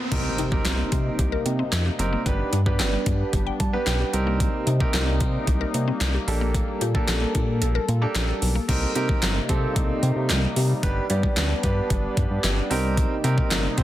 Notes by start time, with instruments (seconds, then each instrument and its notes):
Already playing: riser
0.11 analog synth bass C2, analog synth pad C3 G3 A#3 D#4, synth pluck A#3, grand piano C4 D#4 G4 A#4, kick, closed hi-hat, crash, impact
0.38 analog synth bass C3, synth pluck D#4, closed hi-hat
0.52 grand piano C4 D#4 G4 A#4, synth pluck G4, kick
0.65 analog synth bass C2, synth pluck A#4, snare, clap, closed hi-hat
0.79 synth pluck A#3
0.92 analog synth bass C3, synth pluck C4, kick, closed hi-hat
1.19 analog synth bass C2, synth pluck G4, kick, closed hi-hat
1.32 synth pluck A#4
1.46 analog synth bass C3, synth pluck A#3, closed hi-hat
1.59 synth pluck C4
1.72 analog synth bass F2, snare, clap, closed hi-hat
1.86 synth pluck G4
1.99 analog synth bass F#1, grand piano C4 D#4 G4 A#4, closed hi-hat
2.13 synth pluck A#3
2.26 analog synth bass G1, synth pluck G3, grand piano B3 D4 G4 B4, analog synth pad B3 D4, kick, closed hi-hat
2.53 analog synth bass G2, synth pluck D4, closed hi-hat
2.66 grand piano B3 D4 G4 B4, synth pluck G4, kick
2.79 analog synth bass G1, synth pluck G5, snare, clap, closed hi-hat
2.93 synth pluck G3
3.06 analog synth bass G2, synth pluck B3, kick, closed hi-hat
3.33 analog synth bass G1, synth pluck G4, kick, closed hi-hat
3.47 synth pluck G5
3.60 analog synth bass G2, synth pluck G3, grand piano A5, kick, closed hi-hat
3.73 grand piano B3 D4 G4 B4, synth pluck B3
3.87 analog synth bass B1, grand piano G5, snare, clap, closed hi-hat
4.00 synth pluck G4
4.13 analog synth bass C2, analog synth pad C3 A#3 D#4, grand piano C4 D#4 G4 A#4, closed hi-hat
4.27 synth pluck A#3
4.40 synth pluck A#3, kick, closed hi-hat
4.67 analog synth bass C3, synth pluck D#4, closed hi-hat
4.80 grand piano C4 D#4 G4 A#4, synth pluck G4, kick
4.94 analog synth bass C2, synth pluck A#4, snare, clap, closed hi-hat
5.07 synth pluck A#3
5.20 analog synth bass C3, synth pluck C4, kick, closed hi-hat
5.47 analog synth bass C2, synth pluck G4, kick, closed hi-hat
5.61 synth pluck A#4
5.74 analog synth bass C3, synth pluck A#3, closed hi-hat
5.88 synth pluck C4
6.01 analog synth bass C2, snare, clap, closed hi-hat
6.14 synth pluck G4
6.27 analog synth bass A#1, grand piano A#3 D4 G4 A4, analog synth pad A4, open hi-hat
6.41 synth pluck A#3
6.55 synth pluck A#3, kick, closed hi-hat
6.81 analog synth bass A#2, synth pluck G4, closed hi-hat
6.94 grand piano A#3 D4 G4 A4, synth pluck A4, kick
7.08 analog synth bass A#1, synth pluck A#4, snare, clap, closed hi-hat
7.21 synth pluck A#3
7.35 analog synth bass A#2, synth pluck D4, kick, closed hi-hat
7.62 analog synth bass A#1, synth pluck A4, closed hi-hat
7.75 synth pluck A#4
7.88 analog synth bass A#2, synth pluck A#3, closed hi-hat
8.02 grand piano A#3 D4 G4 A4, synth pluck D4
8.15 analog synth bass A#1, snare, clap, closed hi-hat
8.29 synth pluck A4
8.42 analog synth bass B1, open hi-hat
8.55 synth pluck A#3
8.68 analog synth bass C2, analog synth pad C3 G3 A#3 D#4, grand piano C4 D#4 G4 A#4, kick, closed hi-hat, crash
8.95 analog synth bass C3, grand piano C4 D#4 G4 A#4, closed hi-hat
9.09 kick
9.22 analog synth bass G1, snare, clap, closed hi-hat
9.49 analog synth bass C3, grand piano C4 D#4 G4 A4, kick, closed hi-hat
9.76 analog synth bass C2, kick, closed hi-hat
10.03 analog synth bass C3, closed hi-hat
10.16 analog synth bass C3
10.29 analog synth bass C2, snare, clap, closed hi-hat
10.56 analog synth bass C3, open hi-hat
10.83 analog synth bass G1, grand piano B3 D4 G4 B4, analog synth pad B3 D4, kick, closed hi-hat
11.10 analog synth bass G2, grand piano B3 D4 G4 D5, closed hi-hat
11.23 kick
11.37 analog synth bass D2, snare, clap, closed hi-hat
11.63 analog synth bass G2, grand piano B3 D4 G4 B4, kick, closed hi-hat
11.90 analog synth bass G1, kick, closed hi-hat
12.17 analog synth bass G2, kick, closed hi-hat
12.30 analog synth bass G2
12.44 analog synth bass G1, snare, clap, closed hi-hat
12.70 analog synth bass C2, analog synth pad C3 A#3 D#4, grand piano C4 D#4 G4 A#4, open hi-hat
12.97 kick, closed hi-hat
13.24 analog synth bass C3, grand piano C4 D#4 G4 A#4, closed hi-hat
13.38 kick
13.51 analog synth bass G1, snare, clap, closed hi-hat
13.78 analog synth bass C3, grand piano C4 D#4 G4 C5, kick, closed hi-hat